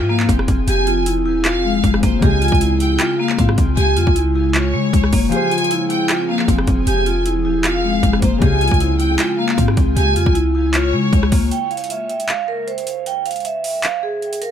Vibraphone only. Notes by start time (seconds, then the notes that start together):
0.09 A#3
0.29 C4
0.68 G4
0.87 F4
1.06 E4
1.25 E4
1.45 F4
1.64 G#3
2.03 A#3
2.22 G4
2.41 F4
2.62 E4
2.81 E4
3.00 F4
3.19 A#3
3.39 C4
3.77 G4
3.97 F4
4.15 E4
4.36 E4
4.55 F4
4.74 G#3
5.13 A#3
5.32 G4
5.51 F4
5.71 E4
5.90 E4
6.10 F4
6.29 A#3
6.48 C4
6.87 G4
7.06 F4
7.26 E4
7.45 E4
7.65 F4
7.84 G#3
8.22 A#3
8.42 G4
8.61 F4
8.81 E4
9.00 E4
9.20 F4
9.38 A#3
9.58 C4
9.96 G4
10.16 F4
10.35 E4
10.55 E4
10.74 F4
10.93 G#3
11.33 A#3
11.51 G5
11.71 F5
11.90 E5
12.09 E5
12.29 F5
12.48 A#4
12.68 C5
13.07 G5
13.26 F5
13.45 E5
13.64 E5
13.84 F5
14.03 G#4
14.42 A#4